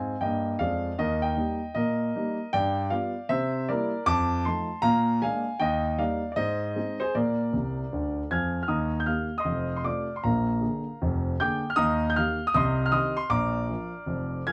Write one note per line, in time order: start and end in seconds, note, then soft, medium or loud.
0.00 0.14 G#2 medium
0.00 0.15 C4 medium
0.00 0.19 F5 soft
0.00 0.21 G#5 medium
0.21 0.52 G2 medium
0.21 0.53 A#3 medium
0.21 0.57 D#5 medium
0.21 0.59 G5 medium
0.59 0.90 F2 medium
0.59 0.91 G#3 medium
0.59 0.96 D5 medium
0.59 0.98 F5 medium
0.98 1.31 D#2 medium
0.98 1.22 A#4 medium
0.98 1.22 D#5 medium
1.22 1.71 D#5 medium
1.22 1.75 G5 medium
1.36 1.58 G3 soft
1.36 1.58 A#3 soft
1.36 1.58 D#4 soft
1.75 2.08 A#2 medium
1.75 2.49 A#4 medium
1.75 2.52 D#5 medium
2.15 2.36 G3 soft
2.15 2.36 A#3 soft
2.15 2.37 D#4 medium
2.53 2.86 G2 medium
2.53 2.89 D5 medium
2.53 2.91 G5 loud
2.90 3.12 G3 soft
2.90 3.12 B3 soft
2.90 3.12 F4 medium
2.90 3.27 D5 medium
2.90 3.29 F5 medium
3.29 3.62 C3 medium
3.29 3.66 C5 medium
3.29 3.68 E5 loud
3.69 3.90 G3 soft
3.69 3.90 A#3 soft
3.69 3.91 E4 medium
3.69 4.05 A#4 medium
3.69 4.07 D5 medium
4.06 4.39 F2 medium
4.06 4.43 A5 loud
4.06 4.45 D6 loud
4.45 4.66 F3 soft
4.45 4.66 A3 soft
4.45 4.67 D#4 soft
4.45 4.81 A5 medium
4.45 4.83 C6 medium
4.82 5.16 A#2 loud
4.82 5.19 F5 medium
4.82 5.21 A#5 loud
5.22 5.43 G#3 soft
5.22 5.44 A#3 soft
5.22 5.44 D4 soft
5.22 5.58 F5 medium
5.22 5.60 G#5 medium
5.60 5.93 D#2 medium
5.60 5.97 D#5 medium
5.60 5.99 G5 medium
5.98 6.20 G3 soft
5.98 6.20 A#3 soft
5.98 6.20 D#4 medium
5.98 6.30 D5 medium
5.98 6.32 F5 medium
6.32 6.37 D5 medium
6.36 6.70 G#2 medium
6.36 6.97 C5 medium
6.36 7.00 D#5 loud
6.76 6.97 G#3 soft
6.76 6.97 C4 soft
6.76 6.98 D#4 soft
7.00 7.14 G#4 medium
7.00 7.14 C5 medium
7.15 7.47 A#2 medium
7.15 8.27 A#4 medium
7.15 8.30 D5 medium
7.53 7.82 C2 soft
7.53 7.82 C3 medium
7.92 8.21 D2 medium
7.92 8.21 D3 medium
8.31 8.60 F2 medium
8.31 8.60 F3 medium
8.31 8.61 G#5 medium
8.31 8.61 F6 medium
8.31 8.62 G#6 medium
8.63 8.69 F6 medium
8.68 9.01 D#2 medium
8.68 9.01 D#3 medium
8.68 8.99 D#5 medium
8.68 8.99 A#5 soft
8.68 9.00 D#6 medium
9.00 9.07 G6 medium
9.06 9.27 D#3 soft
9.06 9.28 A#3 soft
9.06 9.29 G4 soft
9.06 9.37 F5 medium
9.06 9.39 F6 medium
9.38 9.75 D#5 medium
9.38 9.75 C6 medium
9.38 9.77 D#6 medium
9.45 9.78 F1 medium
9.45 9.78 F2 medium
9.76 9.84 C6 medium
9.84 10.05 C3 soft
9.84 10.06 A3 soft
9.84 10.06 F4 soft
9.84 10.14 D5 medium
9.84 10.16 D6 medium
10.16 10.23 C6 medium
10.24 10.57 A#1 medium
10.24 10.56 A#2 medium
10.24 11.22 A#4 soft
10.24 11.22 F5 medium
10.24 11.25 A#5 medium
10.61 10.82 D3 soft
10.61 10.83 A#3 soft
10.61 10.83 G#4 soft
11.01 11.34 F1 medium
11.01 11.34 F2 medium
11.40 11.61 D3 soft
11.40 11.62 A#3 soft
11.40 11.62 G#4 medium
11.40 11.70 G5 medium
11.40 11.70 D6 medium
11.40 11.71 G6 medium
11.70 11.77 F6 medium
11.76 12.10 D#2 medium
11.76 12.10 D#3 medium
11.76 12.07 D#5 medium
11.76 12.07 A#5 medium
11.76 12.08 D#6 loud
12.10 12.16 G6 medium
12.16 12.38 D#3 soft
12.16 12.38 A#3 soft
12.16 12.38 G4 soft
12.16 12.46 F5 medium
12.16 12.48 F6 medium
12.47 12.53 D#6 medium
12.54 12.87 C2 medium
12.54 12.87 C3 medium
12.54 12.85 D#5 medium
12.54 12.85 C6 medium
12.54 12.86 D#6 loud
12.86 12.93 F6 medium
12.91 13.13 D#3 soft
12.91 13.14 C4 soft
12.91 13.14 G4 soft
12.91 13.17 D#5 medium
12.91 13.15 C6 medium
12.91 13.18 D#6 medium
13.17 13.30 C6 medium
13.30 13.63 A#1 medium
13.30 13.63 A#2 medium
13.30 14.42 D5 medium
13.30 14.42 A#5 medium
13.30 14.46 D6 loud
13.69 13.90 F3 soft
13.69 13.91 F4 soft
13.69 13.91 A#4 soft
14.06 14.40 F1 medium
14.06 14.40 F2 medium
14.47 14.52 F3 soft
14.47 14.52 F4 soft
14.47 14.52 A#4 soft
14.47 14.52 G#5 medium
14.47 14.52 F6 medium
14.47 14.52 G#6 medium